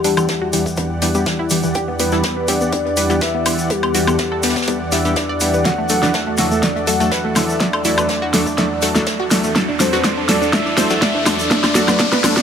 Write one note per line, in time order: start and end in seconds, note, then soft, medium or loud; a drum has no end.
0.00 12.42 E2 medium
0.00 12.42 E3 medium
0.00 0.78 G4 medium
0.00 5.61 G4 medium
0.00 12.42 D5 medium
0.00 12.42 F#5 medium
0.04 0.14 G3 loud
0.04 0.14 B3 medium
0.04 0.12 D4 medium
0.04 0.14 D4 medium
0.04 0.14 E4 medium
0.04 0.14 G4 loud
0.04 closed hi-hat medium
0.04 open hi-hat loud
0.04 shaker loud
0.17 0.24 E3 medium
0.17 0.27 G3 medium
0.17 0.27 B3 medium
0.17 0.27 D4 medium
0.17 0.27 E4 medium
0.17 0.27 A4 medium
0.17 high woodblock medium
0.17 shaker medium
0.28 0.36 E3 medium
0.28 0.38 G3 medium
0.28 0.38 B3 medium
0.28 0.38 D4 medium
0.28 0.38 E4 medium
0.28 0.38 G4 medium
0.28 kick loud
0.28 snare loud
0.28 closed hi-hat medium
0.28 shaker soft
0.42 0.48 F#4 medium
0.53 0.61 E3 medium
0.53 0.63 G3 medium
0.53 0.63 B3 medium
0.53 0.63 D4 medium
0.53 0.63 E4 medium
0.53 0.63 G4 loud
0.53 closed hi-hat medium
0.53 open hi-hat loud
0.53 shaker medium
0.66 0.73 E3 medium
0.66 kick medium
0.66 closed hi-hat soft
0.66 shaker medium
0.76 0.85 E3 medium
0.76 0.87 G3 medium
0.76 0.87 B3 medium
0.76 0.87 D4 medium
0.76 0.87 E4 medium
0.76 0.87 G4 medium
0.76 kick loud
0.76 closed hi-hat medium
0.76 shaker soft
1.01 1.10 E3 medium
1.01 1.11 G3 medium
1.01 1.11 B3 medium
1.01 1.11 D4 medium
1.01 1.11 E4 medium
1.01 1.11 G4 loud
1.01 snare medium
1.01 closed hi-hat medium
1.01 open hi-hat loud
1.01 shaker medium
1.14 1.25 G3 loud
1.14 1.25 B3 medium
1.14 1.25 D4 medium
1.14 1.25 E4 medium
1.14 1.25 G4 loud
1.14 shaker medium
1.26 1.34 E3 medium
1.26 1.41 G3 medium
1.26 1.41 B3 medium
1.26 1.41 D4 medium
1.26 1.41 E4 medium
1.26 1.41 G4 medium
1.26 kick loud
1.26 snare loud
1.26 closed hi-hat medium
1.26 shaker soft
1.39 1.46 E4 medium
1.50 1.58 E3 medium
1.50 1.72 G3 medium
1.50 1.72 B3 medium
1.50 1.72 D4 medium
1.50 1.72 E4 medium
1.50 1.72 G4 medium
1.50 closed hi-hat medium
1.50 open hi-hat loud
1.50 shaker loud
1.63 1.70 E3 medium
1.63 shaker medium
1.75 1.84 G3 medium
1.75 1.84 B3 medium
1.75 1.84 D4 medium
1.75 1.84 E4 medium
1.75 1.84 G4 medium
1.75 1.83 G4 loud
1.75 kick loud
1.75 closed hi-hat medium
1.75 shaker soft
1.88 1.95 B3 medium
1.99 2.09 G3 loud
1.99 2.09 B3 medium
1.99 2.07 B3 medium
1.99 2.09 D4 medium
1.99 2.09 E4 medium
1.99 2.09 G4 loud
1.99 2.50 B4 loud
1.99 closed hi-hat medium
1.99 open hi-hat loud
1.99 shaker medium
2.11 2.22 G3 medium
2.11 2.22 B3 medium
2.11 2.22 D4 medium
2.11 2.19 E4 loud
2.11 2.22 E4 medium
2.11 2.22 A4 loud
2.11 snare soft
2.11 shaker medium
2.23 2.33 G3 medium
2.23 2.33 B3 medium
2.23 2.32 B3 medium
2.23 2.33 D4 medium
2.23 2.33 E4 medium
2.23 2.33 G4 medium
2.23 kick loud
2.23 snare loud
2.23 closed hi-hat medium
2.23 shaker soft
2.37 2.44 B3 medium
2.48 2.58 G3 medium
2.48 2.58 B3 medium
2.48 2.58 D4 medium
2.48 2.58 E4 medium
2.48 2.56 G4 medium
2.48 2.58 G4 loud
2.48 2.72 D5 loud
2.48 closed hi-hat medium
2.48 open hi-hat loud
2.48 shaker medium
2.61 2.68 B3 medium
2.61 shaker medium
2.72 2.82 G3 medium
2.72 2.82 B3 medium
2.72 2.82 D4 medium
2.72 2.82 E4 medium
2.72 2.82 G4 medium
2.72 3.23 D5 loud
2.72 kick loud
2.72 closed hi-hat medium
2.72 shaker soft
2.85 2.92 B3 medium
2.85 closed hi-hat soft
2.97 3.06 G3 medium
2.97 3.06 B3 medium
2.97 3.06 D4 medium
2.97 3.06 E4 medium
2.97 3.06 G4 loud
2.97 3.05 B4 medium
2.97 closed hi-hat medium
2.97 open hi-hat loud
2.97 shaker loud
3.10 3.20 G3 loud
3.10 3.20 B3 medium
3.10 3.17 B3 medium
3.10 3.20 D4 medium
3.10 3.20 E4 medium
3.10 3.20 G4 loud
3.10 shaker soft
3.21 3.36 G3 medium
3.21 3.36 B3 medium
3.21 3.36 D4 medium
3.21 3.36 E4 medium
3.21 3.36 G4 medium
3.21 3.29 B4 medium
3.21 3.72 E5 loud
3.21 kick loud
3.21 snare loud
3.21 closed hi-hat medium
3.21 shaker soft
3.34 3.41 B3 medium
3.45 3.67 G3 medium
3.45 3.67 B3 medium
3.45 3.54 B3 medium
3.45 3.67 D4 medium
3.45 3.67 E4 medium
3.45 3.67 G4 medium
3.45 closed hi-hat medium
3.45 open hi-hat loud
3.45 high woodblock medium
3.45 shaker loud
3.58 shaker medium
3.70 3.80 G3 medium
3.70 3.80 B3 medium
3.70 3.78 B3 medium
3.70 3.80 D4 medium
3.70 3.80 E4 medium
3.70 3.80 G4 medium
3.70 4.68 G4 loud
3.70 kick loud
3.70 closed hi-hat loud
3.70 shaker soft
3.83 3.90 B3 medium
3.83 closed hi-hat soft
3.83 high woodblock medium
3.94 4.04 G3 loud
3.94 4.04 B3 medium
3.94 4.04 D4 medium
3.94 4.04 E4 medium
3.94 4.02 F#4 medium
3.94 4.04 G4 loud
3.94 closed hi-hat medium
3.94 open hi-hat loud
3.94 shaker medium
4.07 4.17 G3 medium
4.07 4.14 B3 medium
4.07 4.17 B3 medium
4.07 4.17 D4 medium
4.07 4.17 E4 medium
4.07 4.17 A4 medium
4.07 high woodblock medium
4.07 shaker medium
4.18 4.28 G3 medium
4.18 4.27 B3 medium
4.18 4.28 B3 medium
4.18 4.28 D4 medium
4.18 4.28 E4 medium
4.18 4.28 G4 medium
4.18 kick loud
4.18 snare loud
4.18 closed hi-hat medium
4.18 shaker soft
4.32 4.39 A4 medium
4.43 4.53 G3 medium
4.43 4.51 B3 medium
4.43 4.53 B3 medium
4.43 4.53 D4 medium
4.43 4.53 E4 medium
4.43 4.53 G4 loud
4.43 snare medium
4.43 closed hi-hat medium
4.43 open hi-hat loud
4.43 shaker medium
4.50 snare medium
4.50 closed hi-hat medium
4.56 4.63 B3 medium
4.56 kick medium
4.56 snare loud
4.56 closed hi-hat medium
4.56 shaker soft
4.62 snare medium
4.62 closed hi-hat medium
4.68 4.77 G3 medium
4.68 4.75 B3 medium
4.68 4.77 B3 medium
4.68 4.77 D4 medium
4.68 4.77 E4 medium
4.68 4.77 G4 medium
4.68 kick loud
4.68 closed hi-hat medium
4.68 shaker soft
4.92 5.02 G3 medium
4.92 5.00 B3 medium
4.92 5.02 B3 medium
4.92 5.02 D4 medium
4.92 5.02 E4 medium
4.92 5.02 G4 loud
4.92 5.18 E5 loud
4.92 snare medium
4.92 closed hi-hat medium
4.92 open hi-hat loud
4.92 shaker medium
5.05 5.15 G3 loud
5.05 5.15 B3 medium
5.05 5.15 D4 medium
5.05 5.15 E4 medium
5.05 5.15 G4 loud
5.05 shaker medium
5.16 5.31 G3 medium
5.16 5.24 B3 medium
5.16 5.31 B3 medium
5.16 5.31 D4 medium
5.16 5.31 E4 medium
5.16 5.31 G4 medium
5.16 5.67 D5 loud
5.16 kick loud
5.16 snare loud
5.16 closed hi-hat medium
5.16 shaker soft
5.29 5.36 D5 medium
5.41 5.63 G3 medium
5.41 5.63 B3 medium
5.41 5.49 B3 medium
5.41 5.63 D4 medium
5.41 5.63 E4 medium
5.41 5.63 G4 medium
5.41 closed hi-hat medium
5.41 open hi-hat loud
5.41 shaker loud
5.53 5.61 B3 medium
5.53 shaker medium
5.65 5.75 F#3 medium
5.65 5.75 A3 medium
5.65 5.75 D4 medium
5.65 5.73 F#4 loud
5.65 5.75 F#4 medium
5.65 9.52 A4 medium
5.65 5.75 A4 medium
5.65 6.40 F#5 loud
5.65 kick loud
5.65 snare soft
5.65 closed hi-hat medium
5.65 riser medium
5.65 shaker soft
5.78 5.85 A3 medium
5.89 5.99 F#3 loud
5.89 5.97 A3 medium
5.89 5.99 A3 medium
5.89 5.99 D4 medium
5.89 5.99 F#4 medium
5.89 5.99 A4 loud
5.89 closed hi-hat medium
5.89 open hi-hat loud
5.89 shaker loud
6.03 6.12 F#3 medium
6.03 6.12 A3 medium
6.03 6.09 D4 loud
6.03 6.12 D4 medium
6.03 6.12 F#4 medium
6.03 6.12 B4 medium
6.03 snare soft
6.03 shaker soft
6.14 6.23 F#3 medium
6.14 6.22 A3 medium
6.14 6.24 A3 medium
6.14 6.24 D4 medium
6.14 6.23 F#4 medium
6.14 6.23 A4 medium
6.14 kick loud
6.14 snare loud
6.14 closed hi-hat medium
6.14 shaker soft
6.27 6.34 A3 medium
6.38 6.48 F#3 medium
6.38 6.48 A3 medium
6.38 6.48 D4 medium
6.38 6.46 F#4 medium
6.38 6.48 F#4 medium
6.38 6.48 A4 loud
6.38 6.64 E5 loud
6.38 snare medium
6.38 closed hi-hat medium
6.38 open hi-hat loud
6.38 shaker medium
6.51 6.58 A3 medium
6.51 shaker medium
6.63 6.72 F#3 medium
6.63 6.72 A3 medium
6.63 6.72 D4 medium
6.63 6.72 F#4 medium
6.63 6.72 A4 medium
6.63 6.89 D5 loud
6.63 kick loud
6.63 snare medium
6.63 closed hi-hat medium
6.63 shaker soft
6.76 6.83 A3 medium
6.76 closed hi-hat soft
6.87 6.97 F#3 medium
6.87 6.97 A3 medium
6.87 6.97 D4 medium
6.87 6.97 F#4 medium
6.87 6.95 A4 medium
6.87 6.97 A4 medium
6.87 7.38 F#5 loud
6.87 closed hi-hat medium
6.87 open hi-hat loud
6.87 shaker medium
7.00 7.10 F#3 loud
7.00 7.07 A3 medium
7.00 7.10 A3 medium
7.00 7.10 D4 medium
7.00 7.10 F#4 medium
7.00 7.10 A4 loud
7.00 shaker soft
7.11 7.26 F#3 medium
7.11 7.26 A3 medium
7.11 7.26 D4 medium
7.11 7.26 F#4 medium
7.11 7.26 A4 medium
7.11 7.19 B4 loud
7.11 kick loud
7.11 snare loud
7.11 closed hi-hat loud
7.11 shaker soft
7.25 7.31 A3 medium
7.36 7.58 F#3 medium
7.36 7.58 A3 medium
7.36 7.44 A3 medium
7.36 7.58 D4 medium
7.36 7.58 F#4 medium
7.36 7.58 A4 medium
7.36 7.62 E5 loud
7.36 snare medium
7.36 closed hi-hat medium
7.36 open hi-hat loud
7.36 high woodblock medium
7.36 shaker medium
7.49 shaker soft
7.60 7.70 F#3 medium
7.60 7.70 A3 medium
7.60 7.68 A3 medium
7.60 7.70 D4 medium
7.60 7.70 F#4 medium
7.60 7.70 A4 medium
7.60 7.84 D5 loud
7.60 kick loud
7.60 snare medium
7.60 closed hi-hat medium
7.60 shaker soft
7.73 7.80 A3 medium
7.73 closed hi-hat soft
7.73 high woodblock medium
7.85 7.94 F#3 loud
7.85 7.94 A3 medium
7.85 7.94 D4 medium
7.85 7.93 E4 medium
7.85 7.94 F#4 medium
7.85 7.94 A4 loud
7.85 9.27 D5 loud
7.85 closed hi-hat medium
7.85 open hi-hat loud
7.85 shaker medium
7.98 8.08 F#3 medium
7.98 8.08 A3 medium
7.98 8.05 A3 medium
7.98 8.08 D4 medium
7.98 8.08 F#4 medium
7.98 8.08 B4 loud
7.98 high woodblock medium
7.98 shaker medium
8.09 8.19 F#3 medium
8.09 8.19 A3 medium
8.09 8.17 A3 medium
8.09 8.19 D4 medium
8.09 8.19 F#4 medium
8.09 8.19 A4 medium
8.09 kick loud
8.09 snare loud
8.09 closed hi-hat medium
8.09 shaker soft
8.22 8.29 F#4 medium
8.34 8.43 F#3 medium
8.34 8.41 A3 medium
8.34 8.43 A3 medium
8.34 8.43 D4 medium
8.34 8.43 F#4 medium
8.34 8.43 A4 loud
8.34 snare medium
8.34 closed hi-hat medium
8.34 open hi-hat loud
8.34 shaker medium
8.46 8.53 A3 medium
8.46 kick medium
8.46 closed hi-hat soft
8.46 shaker medium
8.58 8.67 F#3 medium
8.58 8.66 A3 medium
8.58 8.67 A3 medium
8.58 8.67 D4 medium
8.58 8.67 F#4 medium
8.58 8.67 A4 medium
8.58 kick loud
8.58 snare medium
8.58 closed hi-hat medium
8.58 shaker soft
8.81 8.92 F#3 medium
8.81 8.90 A3 medium
8.81 8.92 A3 medium
8.81 8.92 D4 medium
8.81 8.92 F#4 medium
8.81 8.92 A4 loud
8.81 snare medium
8.81 closed hi-hat medium
8.81 open hi-hat loud
8.81 shaker medium
8.95 9.05 F#3 loud
8.95 9.05 A3 medium
8.95 9.05 D4 medium
8.95 9.05 F#4 medium
8.95 9.05 A4 loud
8.95 snare medium
8.95 shaker medium
9.06 9.22 F#3 medium
9.06 9.22 A3 medium
9.06 9.14 A3 medium
9.06 9.22 D4 medium
9.06 9.22 F#4 medium
9.06 9.22 A4 medium
9.06 kick loud
9.06 snare loud
9.06 closed hi-hat medium
9.06 shaker soft
9.20 9.27 F#4 medium
9.31 9.53 F#3 medium
9.31 9.39 A3 medium
9.31 9.53 A3 medium
9.31 9.53 D4 medium
9.31 9.53 F#4 medium
9.31 9.53 A4 medium
9.31 snare medium
9.31 closed hi-hat medium
9.31 open hi-hat loud
9.31 shaker medium
9.44 9.51 A3 medium
9.44 shaker medium
9.55 9.65 F#3 medium
9.55 9.65 A3 medium
9.55 9.65 D4 medium
9.55 9.65 F#4 medium
9.55 12.42 A4 medium
9.55 9.63 A4 loud
9.55 9.65 A4 medium
9.55 kick loud
9.55 snare medium
9.55 closed hi-hat medium
9.55 shaker soft
9.69 9.75 D4 medium
9.79 9.89 F#3 loud
9.79 9.89 A3 medium
9.79 9.88 D4 medium
9.79 9.89 D4 medium
9.79 9.89 F#4 medium
9.79 9.89 A4 loud
9.79 10.30 C5 loud
9.79 snare medium
9.79 closed hi-hat medium
9.79 open hi-hat loud
9.79 shaker loud
9.93 10.03 F#3 medium
9.93 10.03 A3 medium
9.93 10.03 D4 medium
9.93 10.00 F#4 medium
9.93 10.03 F#4 medium
9.93 10.03 B4 loud
9.93 snare soft
9.93 shaker soft
10.04 10.14 F#3 medium
10.04 10.14 A3 medium
10.04 10.14 D4 medium
10.04 10.12 D4 medium
10.04 10.14 F#4 medium
10.04 10.14 A4 medium
10.04 kick loud
10.04 snare medium
10.04 snare loud
10.04 closed hi-hat medium
10.04 shaker soft
10.17 10.24 D4 medium
10.28 10.38 F#3 medium
10.28 10.38 A3 medium
10.28 10.38 D4 medium
10.28 10.38 F#4 medium
10.28 10.36 A4 medium
10.28 10.38 A4 loud
10.28 10.55 D5 loud
10.28 snare medium
10.28 closed hi-hat medium
10.28 open hi-hat loud
10.28 shaker medium
10.42 10.48 D4 medium
10.42 shaker medium
10.53 10.62 F#3 medium
10.53 10.62 A3 medium
10.53 10.62 D4 medium
10.53 10.62 F#4 medium
10.53 10.62 A4 medium
10.53 11.28 E5 loud
10.53 kick loud
10.53 snare medium
10.53 closed hi-hat medium
10.53 shaker soft
10.66 10.73 D4 medium
10.66 closed hi-hat soft
10.77 10.87 F#3 medium
10.77 10.87 A3 medium
10.77 10.87 D4 medium
10.77 10.87 F#4 medium
10.77 10.87 A4 loud
10.77 10.85 C5 medium
10.77 snare medium
10.77 closed hi-hat medium
10.77 open hi-hat loud
10.77 shaker medium
10.90 11.00 F#3 loud
10.90 11.00 A3 medium
10.90 11.00 D4 medium
10.90 10.97 D4 medium
10.90 11.00 F#4 medium
10.90 11.00 A4 loud
10.90 shaker soft
11.02 11.17 F#3 medium
11.02 11.17 A3 medium
11.02 11.17 D4 medium
11.02 11.17 F#4 medium
11.02 11.17 A4 medium
11.02 11.10 D5 medium
11.02 kick loud
11.02 snare loud
11.02 snare medium
11.02 closed hi-hat medium
11.02 shaker soft
11.15 11.22 D4 medium
11.26 11.48 F#3 medium
11.26 11.48 A3 medium
11.26 11.34 D4 medium
11.26 11.48 D4 medium
11.26 11.48 F#4 medium
11.26 11.48 A4 loud
11.26 12.42 D5 loud
11.26 snare medium
11.26 snare loud
11.26 closed hi-hat medium
11.26 open hi-hat loud
11.26 high woodblock medium
11.26 shaker medium
11.39 shaker medium
11.51 11.60 F#3 medium
11.51 11.60 A3 medium
11.51 11.60 D4 medium
11.51 11.58 D4 medium
11.51 11.60 F#4 medium
11.51 11.60 A4 medium
11.51 kick loud
11.51 snare medium
11.51 closed hi-hat medium
11.51 shaker soft
11.63 11.70 D4 medium
11.63 snare medium
11.63 snare loud
11.63 closed hi-hat medium
11.63 high woodblock medium
11.75 11.84 F#3 loud
11.75 11.84 A3 medium
11.75 11.84 D4 medium
11.75 11.83 F#4 medium
11.75 11.84 F#4 medium
11.75 11.84 A4 loud
11.75 snare loud
11.75 open hi-hat loud
11.75 shaker loud
11.88 11.98 F#3 medium
11.88 11.98 A3 medium
11.88 11.98 D4 medium
11.88 11.95 D4 medium
11.88 11.98 F#4 medium
11.88 11.98 B4 medium
11.88 snare medium
11.88 closed hi-hat medium
11.88 high woodblock medium
11.88 shaker medium
11.99 12.09 F#3 medium
11.99 12.09 A3 medium
11.99 12.07 D4 medium
11.99 12.09 D4 medium
11.99 12.09 F#4 medium
11.99 12.09 A4 medium
11.99 kick loud
11.99 snare loud
11.99 closed hi-hat medium
11.99 shaker soft
12.12 12.19 B4 loud
12.12 snare medium
12.24 12.33 F#3 medium
12.24 12.33 A3 medium
12.24 12.33 D4 medium
12.24 12.32 D4 medium
12.24 12.33 F#4 medium
12.24 12.33 A4 loud
12.24 snare loud
12.24 closed hi-hat medium
12.24 open hi-hat loud
12.24 high woodblock medium
12.24 shaker medium
12.37 12.42 D4 medium
12.37 kick medium
12.37 snare medium
12.37 shaker medium